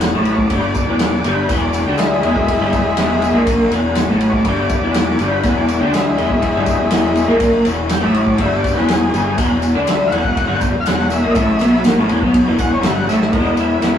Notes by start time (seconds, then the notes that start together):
Already playing: E1 E2 E3 F#4 E5 G#5
0.01 snare, ride, tambourine
0.14 A1 A2 A3
0.24 B4, ride, tambourine
0.33 C#5
0.38 D5, kick
0.50 G1 G2 G3, kick, ride
0.75 kick, ride, tambourine
0.87 E1 E2 E3
0.99 snare, ride, tambourine
1.24 G1 G2 G3, ride, tambourine
1.35 B4
1.49 E1 E2 E3, kick, ride, tambourine
1.60 D5
1.73 ride, tambourine
1.85 D2 D3 D4 G4
1.97 G#3 E4, snare, ride, tambourine
2.23 E1 E2 E3, ride, tambourine
2.35 E1 E2, kick
2.48 kick, ride
2.59 G1 G2 G3
2.73 kick, ride, tambourine
2.85 E2
2.96 E1 E2 E3, snare, ride, tambourine
3.22 ride, tambourine
3.32 A#1 A#2 A#3
3.47 kick, ride, tambourine
3.69 E1 E2 E3, ride, tambourine
3.95 snare, ride, tambourine
4.07 A1 A2 A3
4.20 B4, ride, tambourine
4.30 C#5, kick
4.35 D5
4.45 G1 G2 G3, kick, ride, tambourine
4.69 kick, ride, tambourine
4.82 E1 E2 E3
4.94 snare, ride, tambourine
5.19 G1 G2 G3, ride, tambourine
5.32 B4
5.43 E1 E2 E3, kick, ride, tambourine
5.57 D5
5.68 ride, tambourine
5.81 D2 D3 D4 G4
5.92 G#3 E4, snare, ride, tambourine
6.17 E1 E2 E3, ride, tambourine
6.30 E1 E2, kick
6.42 kick, ride
6.54 G1 G2 G3
6.66 kick, ride, tambourine
6.79 E1 E2
6.91 E1 E2 E3, snare, ride, tambourine
7.15 ride, tambourine
7.28 A#1 A#2 A#3
7.40 kick, ride, tambourine
7.65 E1 E2 E3, ride, tambourine
7.89 G5, snare, ride, tambourine
8.01 A1 A2 A3
8.06 E5
8.14 ride, tambourine
8.24 D5, kick
8.38 G1 G2 G3 E5, kick, ride
8.57 D5
8.64 kick, ride, tambourine
8.74 E1 E2 E3 B4, snare
8.88 G#4, snare, ride, tambourine
9.13 G1 G2 G3, ride, tambourine
9.37 E1 E2 E3, kick, ride, tambourine
9.62 ride, tambourine
9.75 D2 D3 D4
9.87 E5, snare, ride, tambourine
10.07 F5
10.11 E1 E2 E3 F#5, ride, tambourine
10.24 E1 E2, kick
10.37 kick, ride
10.47 G1 G2 G3
10.61 kick, ride, tambourine
10.73 E1 E2
10.80 F5
10.86 E1 E2 E3 F#5, snare, ride, tambourine
11.00 snare
11.10 E5, ride, tambourine
11.22 A#1 A#2 A#3
11.30 D#5
11.34 A1 A2 A3 E5, kick, ride, tambourine
11.59 B1 B2 B3, ride, tambourine
11.84 A#1 A#2 A#3, snare, ride, tambourine
11.97 A1 A2 A3
12.09 E1 E2 E3, ride, tambourine
12.21 B1 B2 B3, kick
12.34 kick, ride, tambourine
12.46 E1 E2 E3
12.59 F#5, kick, ride, tambourine
12.72 C#5
12.83 G1 G2 G3 E5, snare, ride, tambourine
12.95 F#5
13.07 A1 A2 A3 E5, snare, tambourine
13.21 snare
13.33 E1 E3 G#3 B3 D#4 E4 G#4 B4 E5, kick, ride, tambourine
13.46 tambourine
13.56 E1 G#3 B3 E4, ride, tambourine
13.71 tambourine
13.81 E1 E3 G#3 B3 E4, snare, ride, tambourine